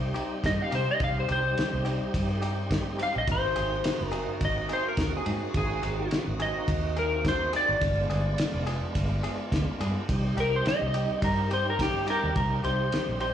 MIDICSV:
0, 0, Header, 1, 6, 480
1, 0, Start_track
1, 0, Key_signature, -3, "minor"
1, 0, Tempo, 567644
1, 851, Time_signature, 4, 2, 24, 8
1, 11278, End_track
2, 0, Start_track
2, 0, Title_t, "Clean electric guitar"
2, 0, Program_c, 0, 27
2, 0, Note_on_c, 0, 72, 124
2, 107, Note_off_c, 0, 72, 0
2, 388, Note_on_c, 0, 75, 102
2, 523, Note_off_c, 0, 75, 0
2, 523, Note_on_c, 0, 77, 84
2, 617, Note_off_c, 0, 77, 0
2, 634, Note_on_c, 0, 72, 92
2, 753, Note_off_c, 0, 72, 0
2, 770, Note_on_c, 0, 75, 101
2, 860, Note_off_c, 0, 75, 0
2, 879, Note_on_c, 0, 77, 101
2, 995, Note_off_c, 0, 77, 0
2, 1014, Note_on_c, 0, 72, 89
2, 1103, Note_off_c, 0, 72, 0
2, 1117, Note_on_c, 0, 72, 118
2, 2036, Note_off_c, 0, 72, 0
2, 2560, Note_on_c, 0, 77, 98
2, 2676, Note_off_c, 0, 77, 0
2, 2691, Note_on_c, 0, 75, 99
2, 2781, Note_off_c, 0, 75, 0
2, 2804, Note_on_c, 0, 72, 97
2, 3438, Note_off_c, 0, 72, 0
2, 3438, Note_on_c, 0, 70, 97
2, 3719, Note_off_c, 0, 70, 0
2, 3761, Note_on_c, 0, 75, 93
2, 3979, Note_off_c, 0, 75, 0
2, 4001, Note_on_c, 0, 72, 90
2, 4116, Note_off_c, 0, 72, 0
2, 4130, Note_on_c, 0, 70, 89
2, 4350, Note_off_c, 0, 70, 0
2, 4370, Note_on_c, 0, 68, 75
2, 4693, Note_off_c, 0, 68, 0
2, 4712, Note_on_c, 0, 68, 101
2, 5167, Note_off_c, 0, 68, 0
2, 5428, Note_on_c, 0, 75, 98
2, 5885, Note_off_c, 0, 75, 0
2, 5908, Note_on_c, 0, 70, 97
2, 6132, Note_off_c, 0, 70, 0
2, 6159, Note_on_c, 0, 72, 99
2, 6378, Note_off_c, 0, 72, 0
2, 6396, Note_on_c, 0, 74, 109
2, 7789, Note_off_c, 0, 74, 0
2, 8796, Note_on_c, 0, 70, 125
2, 8914, Note_off_c, 0, 70, 0
2, 8930, Note_on_c, 0, 72, 91
2, 9020, Note_off_c, 0, 72, 0
2, 9033, Note_on_c, 0, 75, 111
2, 9488, Note_off_c, 0, 75, 0
2, 9507, Note_on_c, 0, 70, 79
2, 9732, Note_off_c, 0, 70, 0
2, 9753, Note_on_c, 0, 72, 98
2, 9873, Note_off_c, 0, 72, 0
2, 9893, Note_on_c, 0, 70, 93
2, 9982, Note_off_c, 0, 70, 0
2, 9996, Note_on_c, 0, 67, 105
2, 10217, Note_off_c, 0, 67, 0
2, 10232, Note_on_c, 0, 70, 96
2, 10238, Note_on_c, 0, 67, 101
2, 10447, Note_off_c, 0, 70, 0
2, 10457, Note_on_c, 0, 70, 67
2, 10458, Note_off_c, 0, 67, 0
2, 10689, Note_off_c, 0, 70, 0
2, 10693, Note_on_c, 0, 72, 87
2, 11160, Note_off_c, 0, 72, 0
2, 11170, Note_on_c, 0, 72, 76
2, 11278, Note_off_c, 0, 72, 0
2, 11278, End_track
3, 0, Start_track
3, 0, Title_t, "Clean electric guitar"
3, 0, Program_c, 1, 27
3, 122, Note_on_c, 1, 67, 84
3, 129, Note_on_c, 1, 63, 77
3, 136, Note_on_c, 1, 60, 77
3, 140, Note_on_c, 1, 55, 70
3, 282, Note_off_c, 1, 67, 0
3, 285, Note_off_c, 1, 63, 0
3, 289, Note_off_c, 1, 60, 0
3, 291, Note_off_c, 1, 55, 0
3, 605, Note_on_c, 1, 67, 74
3, 611, Note_on_c, 1, 63, 78
3, 615, Note_on_c, 1, 60, 62
3, 622, Note_on_c, 1, 55, 60
3, 763, Note_off_c, 1, 67, 0
3, 766, Note_off_c, 1, 63, 0
3, 768, Note_off_c, 1, 60, 0
3, 772, Note_off_c, 1, 55, 0
3, 1088, Note_on_c, 1, 67, 78
3, 1094, Note_on_c, 1, 63, 71
3, 1102, Note_on_c, 1, 60, 59
3, 1105, Note_on_c, 1, 55, 59
3, 1245, Note_off_c, 1, 67, 0
3, 1248, Note_off_c, 1, 63, 0
3, 1252, Note_off_c, 1, 60, 0
3, 1253, Note_off_c, 1, 55, 0
3, 1564, Note_on_c, 1, 67, 75
3, 1574, Note_on_c, 1, 63, 73
3, 1577, Note_on_c, 1, 60, 73
3, 1585, Note_on_c, 1, 55, 72
3, 1723, Note_off_c, 1, 67, 0
3, 1728, Note_off_c, 1, 63, 0
3, 1730, Note_off_c, 1, 60, 0
3, 1733, Note_off_c, 1, 55, 0
3, 2047, Note_on_c, 1, 67, 81
3, 2055, Note_on_c, 1, 63, 68
3, 2060, Note_on_c, 1, 60, 74
3, 2066, Note_on_c, 1, 55, 77
3, 2204, Note_off_c, 1, 67, 0
3, 2208, Note_off_c, 1, 63, 0
3, 2211, Note_off_c, 1, 60, 0
3, 2214, Note_off_c, 1, 55, 0
3, 2526, Note_on_c, 1, 67, 64
3, 2535, Note_on_c, 1, 63, 66
3, 2539, Note_on_c, 1, 60, 66
3, 2544, Note_on_c, 1, 55, 52
3, 2684, Note_off_c, 1, 67, 0
3, 2688, Note_off_c, 1, 63, 0
3, 2690, Note_off_c, 1, 60, 0
3, 2693, Note_off_c, 1, 55, 0
3, 3010, Note_on_c, 1, 68, 82
3, 3015, Note_on_c, 1, 63, 67
3, 3023, Note_on_c, 1, 60, 61
3, 3027, Note_on_c, 1, 54, 59
3, 3166, Note_off_c, 1, 68, 0
3, 3168, Note_off_c, 1, 63, 0
3, 3172, Note_off_c, 1, 60, 0
3, 3174, Note_off_c, 1, 54, 0
3, 3481, Note_on_c, 1, 68, 91
3, 3489, Note_on_c, 1, 63, 77
3, 3495, Note_on_c, 1, 60, 82
3, 3500, Note_on_c, 1, 54, 76
3, 3641, Note_off_c, 1, 68, 0
3, 3645, Note_off_c, 1, 63, 0
3, 3648, Note_off_c, 1, 60, 0
3, 3651, Note_off_c, 1, 54, 0
3, 3966, Note_on_c, 1, 68, 73
3, 3972, Note_on_c, 1, 63, 67
3, 3976, Note_on_c, 1, 60, 66
3, 3983, Note_on_c, 1, 54, 57
3, 4123, Note_off_c, 1, 68, 0
3, 4127, Note_off_c, 1, 63, 0
3, 4128, Note_off_c, 1, 60, 0
3, 4132, Note_off_c, 1, 54, 0
3, 4446, Note_on_c, 1, 68, 72
3, 4454, Note_on_c, 1, 63, 68
3, 4461, Note_on_c, 1, 60, 60
3, 4463, Note_on_c, 1, 54, 60
3, 4604, Note_off_c, 1, 68, 0
3, 4608, Note_off_c, 1, 63, 0
3, 4611, Note_off_c, 1, 60, 0
3, 4612, Note_off_c, 1, 54, 0
3, 4930, Note_on_c, 1, 68, 78
3, 4937, Note_on_c, 1, 63, 69
3, 4943, Note_on_c, 1, 60, 73
3, 4948, Note_on_c, 1, 54, 62
3, 5086, Note_off_c, 1, 68, 0
3, 5089, Note_off_c, 1, 63, 0
3, 5092, Note_off_c, 1, 60, 0
3, 5094, Note_off_c, 1, 54, 0
3, 5410, Note_on_c, 1, 68, 85
3, 5419, Note_on_c, 1, 63, 75
3, 5424, Note_on_c, 1, 60, 76
3, 5429, Note_on_c, 1, 54, 65
3, 5565, Note_off_c, 1, 68, 0
3, 5570, Note_off_c, 1, 63, 0
3, 5572, Note_off_c, 1, 60, 0
3, 5575, Note_off_c, 1, 54, 0
3, 5889, Note_on_c, 1, 68, 71
3, 5896, Note_on_c, 1, 63, 76
3, 5901, Note_on_c, 1, 60, 63
3, 5907, Note_on_c, 1, 54, 53
3, 6045, Note_off_c, 1, 68, 0
3, 6048, Note_off_c, 1, 63, 0
3, 6051, Note_off_c, 1, 60, 0
3, 6054, Note_off_c, 1, 54, 0
3, 6369, Note_on_c, 1, 68, 76
3, 6376, Note_on_c, 1, 63, 73
3, 6381, Note_on_c, 1, 60, 69
3, 6389, Note_on_c, 1, 54, 65
3, 6525, Note_off_c, 1, 68, 0
3, 6529, Note_off_c, 1, 63, 0
3, 6531, Note_off_c, 1, 60, 0
3, 6535, Note_off_c, 1, 54, 0
3, 6848, Note_on_c, 1, 68, 71
3, 6856, Note_on_c, 1, 62, 80
3, 6861, Note_on_c, 1, 59, 62
3, 6867, Note_on_c, 1, 53, 67
3, 7004, Note_off_c, 1, 68, 0
3, 7008, Note_off_c, 1, 62, 0
3, 7011, Note_off_c, 1, 59, 0
3, 7014, Note_off_c, 1, 53, 0
3, 7328, Note_on_c, 1, 68, 92
3, 7336, Note_on_c, 1, 62, 79
3, 7340, Note_on_c, 1, 59, 77
3, 7349, Note_on_c, 1, 53, 78
3, 7485, Note_off_c, 1, 68, 0
3, 7489, Note_off_c, 1, 62, 0
3, 7490, Note_off_c, 1, 59, 0
3, 7495, Note_off_c, 1, 53, 0
3, 7809, Note_on_c, 1, 68, 84
3, 7815, Note_on_c, 1, 62, 81
3, 7825, Note_on_c, 1, 59, 76
3, 7826, Note_on_c, 1, 53, 70
3, 7965, Note_off_c, 1, 68, 0
3, 7968, Note_off_c, 1, 62, 0
3, 7973, Note_off_c, 1, 53, 0
3, 7973, Note_off_c, 1, 59, 0
3, 8293, Note_on_c, 1, 68, 92
3, 8300, Note_on_c, 1, 62, 71
3, 8305, Note_on_c, 1, 59, 79
3, 8312, Note_on_c, 1, 53, 66
3, 8447, Note_off_c, 1, 68, 0
3, 8450, Note_off_c, 1, 62, 0
3, 8453, Note_off_c, 1, 59, 0
3, 8457, Note_off_c, 1, 53, 0
3, 8771, Note_on_c, 1, 67, 80
3, 8778, Note_on_c, 1, 63, 70
3, 8785, Note_on_c, 1, 60, 77
3, 8788, Note_on_c, 1, 55, 64
3, 8926, Note_off_c, 1, 67, 0
3, 8930, Note_off_c, 1, 63, 0
3, 8933, Note_off_c, 1, 60, 0
3, 8934, Note_off_c, 1, 55, 0
3, 9254, Note_on_c, 1, 67, 83
3, 9262, Note_on_c, 1, 63, 81
3, 9268, Note_on_c, 1, 60, 67
3, 9273, Note_on_c, 1, 55, 73
3, 9408, Note_off_c, 1, 67, 0
3, 9412, Note_off_c, 1, 63, 0
3, 9415, Note_off_c, 1, 60, 0
3, 9417, Note_off_c, 1, 55, 0
3, 9733, Note_on_c, 1, 67, 79
3, 9740, Note_on_c, 1, 63, 77
3, 9746, Note_on_c, 1, 60, 71
3, 9750, Note_on_c, 1, 55, 65
3, 9888, Note_off_c, 1, 67, 0
3, 9891, Note_off_c, 1, 63, 0
3, 9894, Note_off_c, 1, 60, 0
3, 9896, Note_off_c, 1, 55, 0
3, 10205, Note_on_c, 1, 67, 80
3, 10213, Note_on_c, 1, 63, 69
3, 10219, Note_on_c, 1, 60, 68
3, 10226, Note_on_c, 1, 55, 65
3, 10364, Note_off_c, 1, 67, 0
3, 10368, Note_off_c, 1, 63, 0
3, 10371, Note_off_c, 1, 60, 0
3, 10374, Note_off_c, 1, 55, 0
3, 10685, Note_on_c, 1, 67, 71
3, 10691, Note_on_c, 1, 63, 60
3, 10695, Note_on_c, 1, 60, 68
3, 10701, Note_on_c, 1, 55, 62
3, 10844, Note_off_c, 1, 67, 0
3, 10847, Note_off_c, 1, 63, 0
3, 10849, Note_off_c, 1, 60, 0
3, 10852, Note_off_c, 1, 55, 0
3, 11166, Note_on_c, 1, 67, 73
3, 11175, Note_on_c, 1, 63, 64
3, 11181, Note_on_c, 1, 60, 70
3, 11184, Note_on_c, 1, 55, 65
3, 11278, Note_off_c, 1, 55, 0
3, 11278, Note_off_c, 1, 60, 0
3, 11278, Note_off_c, 1, 63, 0
3, 11278, Note_off_c, 1, 67, 0
3, 11278, End_track
4, 0, Start_track
4, 0, Title_t, "Tonewheel organ"
4, 0, Program_c, 2, 16
4, 0, Note_on_c, 2, 55, 68
4, 0, Note_on_c, 2, 60, 53
4, 0, Note_on_c, 2, 63, 56
4, 0, Note_on_c, 2, 67, 73
4, 2732, Note_off_c, 2, 55, 0
4, 2733, Note_off_c, 2, 60, 0
4, 2735, Note_off_c, 2, 63, 0
4, 2737, Note_off_c, 2, 67, 0
4, 2765, Note_on_c, 2, 58, 61
4, 2770, Note_on_c, 2, 60, 55
4, 2772, Note_on_c, 2, 63, 56
4, 2775, Note_on_c, 2, 66, 75
4, 6574, Note_off_c, 2, 58, 0
4, 6576, Note_off_c, 2, 60, 0
4, 6577, Note_off_c, 2, 63, 0
4, 6579, Note_off_c, 2, 66, 0
4, 6602, Note_on_c, 2, 56, 65
4, 6605, Note_on_c, 2, 59, 60
4, 6609, Note_on_c, 2, 62, 64
4, 6613, Note_on_c, 2, 65, 70
4, 8492, Note_off_c, 2, 56, 0
4, 8494, Note_off_c, 2, 59, 0
4, 8496, Note_off_c, 2, 62, 0
4, 8498, Note_off_c, 2, 65, 0
4, 8529, Note_on_c, 2, 55, 72
4, 8533, Note_on_c, 2, 60, 73
4, 8536, Note_on_c, 2, 63, 71
4, 8540, Note_on_c, 2, 67, 77
4, 10417, Note_off_c, 2, 55, 0
4, 10419, Note_off_c, 2, 60, 0
4, 10421, Note_off_c, 2, 63, 0
4, 10423, Note_off_c, 2, 67, 0
4, 10452, Note_on_c, 2, 55, 50
4, 10454, Note_on_c, 2, 60, 54
4, 10458, Note_on_c, 2, 63, 55
4, 10462, Note_on_c, 2, 67, 71
4, 11278, Note_off_c, 2, 55, 0
4, 11278, Note_off_c, 2, 60, 0
4, 11278, Note_off_c, 2, 63, 0
4, 11278, Note_off_c, 2, 67, 0
4, 11278, End_track
5, 0, Start_track
5, 0, Title_t, "Fingered electric bass"
5, 0, Program_c, 3, 33
5, 0, Note_on_c, 3, 36, 106
5, 95, Note_off_c, 3, 36, 0
5, 371, Note_on_c, 3, 43, 94
5, 486, Note_off_c, 3, 43, 0
5, 613, Note_on_c, 3, 48, 88
5, 727, Note_off_c, 3, 48, 0
5, 849, Note_on_c, 3, 36, 91
5, 1055, Note_off_c, 3, 36, 0
5, 1095, Note_on_c, 3, 36, 116
5, 1299, Note_off_c, 3, 36, 0
5, 1465, Note_on_c, 3, 36, 79
5, 1671, Note_off_c, 3, 36, 0
5, 1812, Note_on_c, 3, 43, 101
5, 2543, Note_off_c, 3, 43, 0
5, 2671, Note_on_c, 3, 34, 76
5, 2759, Note_off_c, 3, 34, 0
5, 2772, Note_on_c, 3, 32, 105
5, 2977, Note_off_c, 3, 32, 0
5, 3016, Note_on_c, 3, 32, 85
5, 3219, Note_off_c, 3, 32, 0
5, 3389, Note_on_c, 3, 30, 82
5, 3593, Note_off_c, 3, 30, 0
5, 3730, Note_on_c, 3, 32, 104
5, 3936, Note_off_c, 3, 32, 0
5, 4207, Note_on_c, 3, 39, 92
5, 4323, Note_off_c, 3, 39, 0
5, 4449, Note_on_c, 3, 44, 87
5, 4564, Note_off_c, 3, 44, 0
5, 4689, Note_on_c, 3, 32, 88
5, 4895, Note_off_c, 3, 32, 0
5, 4933, Note_on_c, 3, 32, 104
5, 5137, Note_off_c, 3, 32, 0
5, 5306, Note_on_c, 3, 32, 84
5, 5511, Note_off_c, 3, 32, 0
5, 5648, Note_on_c, 3, 39, 95
5, 6380, Note_off_c, 3, 39, 0
5, 6502, Note_on_c, 3, 32, 79
5, 6594, Note_off_c, 3, 32, 0
5, 6609, Note_on_c, 3, 31, 98
5, 6815, Note_off_c, 3, 31, 0
5, 6847, Note_on_c, 3, 31, 94
5, 7054, Note_off_c, 3, 31, 0
5, 7224, Note_on_c, 3, 29, 78
5, 7430, Note_off_c, 3, 29, 0
5, 7571, Note_on_c, 3, 31, 113
5, 7776, Note_off_c, 3, 31, 0
5, 8051, Note_on_c, 3, 38, 94
5, 8166, Note_off_c, 3, 38, 0
5, 8290, Note_on_c, 3, 43, 93
5, 8405, Note_off_c, 3, 43, 0
5, 8532, Note_on_c, 3, 36, 96
5, 8737, Note_off_c, 3, 36, 0
5, 8768, Note_on_c, 3, 36, 110
5, 8975, Note_off_c, 3, 36, 0
5, 9147, Note_on_c, 3, 36, 77
5, 9352, Note_off_c, 3, 36, 0
5, 9490, Note_on_c, 3, 43, 95
5, 10223, Note_off_c, 3, 43, 0
5, 10346, Note_on_c, 3, 39, 74
5, 10437, Note_off_c, 3, 39, 0
5, 10451, Note_on_c, 3, 36, 90
5, 10657, Note_off_c, 3, 36, 0
5, 10689, Note_on_c, 3, 36, 87
5, 10896, Note_off_c, 3, 36, 0
5, 11067, Note_on_c, 3, 34, 64
5, 11273, Note_off_c, 3, 34, 0
5, 11278, End_track
6, 0, Start_track
6, 0, Title_t, "Drums"
6, 132, Note_on_c, 9, 51, 61
6, 216, Note_off_c, 9, 51, 0
6, 370, Note_on_c, 9, 36, 81
6, 373, Note_on_c, 9, 51, 82
6, 385, Note_on_c, 9, 38, 113
6, 454, Note_off_c, 9, 36, 0
6, 458, Note_off_c, 9, 51, 0
6, 470, Note_off_c, 9, 38, 0
6, 611, Note_on_c, 9, 51, 71
6, 695, Note_off_c, 9, 51, 0
6, 845, Note_on_c, 9, 51, 78
6, 848, Note_on_c, 9, 36, 112
6, 930, Note_off_c, 9, 51, 0
6, 932, Note_off_c, 9, 36, 0
6, 1088, Note_on_c, 9, 51, 57
6, 1173, Note_off_c, 9, 51, 0
6, 1332, Note_on_c, 9, 51, 80
6, 1344, Note_on_c, 9, 38, 121
6, 1417, Note_off_c, 9, 51, 0
6, 1428, Note_off_c, 9, 38, 0
6, 1570, Note_on_c, 9, 51, 67
6, 1654, Note_off_c, 9, 51, 0
6, 1810, Note_on_c, 9, 36, 88
6, 1813, Note_on_c, 9, 51, 98
6, 1895, Note_off_c, 9, 36, 0
6, 1897, Note_off_c, 9, 51, 0
6, 2050, Note_on_c, 9, 51, 66
6, 2135, Note_off_c, 9, 51, 0
6, 2289, Note_on_c, 9, 36, 76
6, 2289, Note_on_c, 9, 51, 89
6, 2301, Note_on_c, 9, 38, 110
6, 2374, Note_off_c, 9, 36, 0
6, 2374, Note_off_c, 9, 51, 0
6, 2385, Note_off_c, 9, 38, 0
6, 2531, Note_on_c, 9, 51, 73
6, 2615, Note_off_c, 9, 51, 0
6, 2769, Note_on_c, 9, 51, 89
6, 2770, Note_on_c, 9, 36, 113
6, 2854, Note_off_c, 9, 36, 0
6, 2854, Note_off_c, 9, 51, 0
6, 3008, Note_on_c, 9, 51, 66
6, 3093, Note_off_c, 9, 51, 0
6, 3248, Note_on_c, 9, 51, 103
6, 3260, Note_on_c, 9, 38, 120
6, 3333, Note_off_c, 9, 51, 0
6, 3345, Note_off_c, 9, 38, 0
6, 3488, Note_on_c, 9, 51, 64
6, 3573, Note_off_c, 9, 51, 0
6, 3728, Note_on_c, 9, 51, 88
6, 3729, Note_on_c, 9, 36, 93
6, 3812, Note_off_c, 9, 51, 0
6, 3813, Note_off_c, 9, 36, 0
6, 3968, Note_on_c, 9, 51, 67
6, 4052, Note_off_c, 9, 51, 0
6, 4203, Note_on_c, 9, 51, 90
6, 4207, Note_on_c, 9, 36, 87
6, 4215, Note_on_c, 9, 38, 112
6, 4288, Note_off_c, 9, 51, 0
6, 4291, Note_off_c, 9, 36, 0
6, 4300, Note_off_c, 9, 38, 0
6, 4447, Note_on_c, 9, 51, 73
6, 4532, Note_off_c, 9, 51, 0
6, 4687, Note_on_c, 9, 51, 87
6, 4688, Note_on_c, 9, 36, 119
6, 4772, Note_off_c, 9, 36, 0
6, 4772, Note_off_c, 9, 51, 0
6, 4929, Note_on_c, 9, 51, 69
6, 5013, Note_off_c, 9, 51, 0
6, 5167, Note_on_c, 9, 51, 85
6, 5179, Note_on_c, 9, 38, 127
6, 5251, Note_off_c, 9, 51, 0
6, 5263, Note_off_c, 9, 38, 0
6, 5409, Note_on_c, 9, 51, 63
6, 5494, Note_off_c, 9, 51, 0
6, 5648, Note_on_c, 9, 36, 103
6, 5649, Note_on_c, 9, 51, 94
6, 5732, Note_off_c, 9, 36, 0
6, 5733, Note_off_c, 9, 51, 0
6, 5890, Note_on_c, 9, 51, 53
6, 5974, Note_off_c, 9, 51, 0
6, 6128, Note_on_c, 9, 36, 85
6, 6128, Note_on_c, 9, 51, 89
6, 6140, Note_on_c, 9, 38, 118
6, 6212, Note_off_c, 9, 51, 0
6, 6213, Note_off_c, 9, 36, 0
6, 6224, Note_off_c, 9, 38, 0
6, 6369, Note_on_c, 9, 51, 81
6, 6453, Note_off_c, 9, 51, 0
6, 6608, Note_on_c, 9, 51, 93
6, 6609, Note_on_c, 9, 36, 125
6, 6692, Note_off_c, 9, 51, 0
6, 6693, Note_off_c, 9, 36, 0
6, 6853, Note_on_c, 9, 51, 65
6, 6937, Note_off_c, 9, 51, 0
6, 7087, Note_on_c, 9, 51, 106
6, 7099, Note_on_c, 9, 38, 120
6, 7172, Note_off_c, 9, 51, 0
6, 7184, Note_off_c, 9, 38, 0
6, 7330, Note_on_c, 9, 51, 66
6, 7414, Note_off_c, 9, 51, 0
6, 7570, Note_on_c, 9, 36, 89
6, 7570, Note_on_c, 9, 51, 101
6, 7654, Note_off_c, 9, 51, 0
6, 7655, Note_off_c, 9, 36, 0
6, 7812, Note_on_c, 9, 51, 65
6, 7897, Note_off_c, 9, 51, 0
6, 8051, Note_on_c, 9, 36, 86
6, 8053, Note_on_c, 9, 51, 91
6, 8065, Note_on_c, 9, 38, 121
6, 8135, Note_off_c, 9, 36, 0
6, 8138, Note_off_c, 9, 51, 0
6, 8149, Note_off_c, 9, 38, 0
6, 8293, Note_on_c, 9, 51, 81
6, 8377, Note_off_c, 9, 51, 0
6, 8532, Note_on_c, 9, 36, 117
6, 8533, Note_on_c, 9, 51, 99
6, 8616, Note_off_c, 9, 36, 0
6, 8618, Note_off_c, 9, 51, 0
6, 8774, Note_on_c, 9, 51, 69
6, 8858, Note_off_c, 9, 51, 0
6, 9011, Note_on_c, 9, 51, 82
6, 9023, Note_on_c, 9, 38, 119
6, 9095, Note_off_c, 9, 51, 0
6, 9107, Note_off_c, 9, 38, 0
6, 9251, Note_on_c, 9, 51, 67
6, 9336, Note_off_c, 9, 51, 0
6, 9489, Note_on_c, 9, 51, 98
6, 9490, Note_on_c, 9, 36, 90
6, 9573, Note_off_c, 9, 51, 0
6, 9574, Note_off_c, 9, 36, 0
6, 9732, Note_on_c, 9, 51, 60
6, 9816, Note_off_c, 9, 51, 0
6, 9971, Note_on_c, 9, 36, 83
6, 9974, Note_on_c, 9, 51, 98
6, 9985, Note_on_c, 9, 38, 127
6, 10056, Note_off_c, 9, 36, 0
6, 10058, Note_off_c, 9, 51, 0
6, 10070, Note_off_c, 9, 38, 0
6, 10211, Note_on_c, 9, 51, 77
6, 10296, Note_off_c, 9, 51, 0
6, 10449, Note_on_c, 9, 51, 86
6, 10451, Note_on_c, 9, 36, 105
6, 10533, Note_off_c, 9, 51, 0
6, 10536, Note_off_c, 9, 36, 0
6, 10691, Note_on_c, 9, 51, 62
6, 10776, Note_off_c, 9, 51, 0
6, 10928, Note_on_c, 9, 51, 91
6, 10940, Note_on_c, 9, 38, 123
6, 11012, Note_off_c, 9, 51, 0
6, 11024, Note_off_c, 9, 38, 0
6, 11165, Note_on_c, 9, 51, 61
6, 11250, Note_off_c, 9, 51, 0
6, 11278, End_track
0, 0, End_of_file